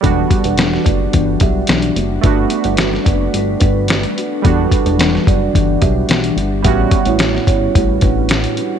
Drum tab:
HH |x-xxx-x-x-x-xxx-|x-xxx-x-x-x-xxx-|x-xxx-x-x-x-xxx-|x-xxx-x-x-x-xxx-|
SD |----oo------o---|----oo------o---|----oo------o---|----oo------o---|
BD |o-o---o-o-o-----|o-----o---o-----|o-o---o-o-o-----|o-o---o-o-o-----|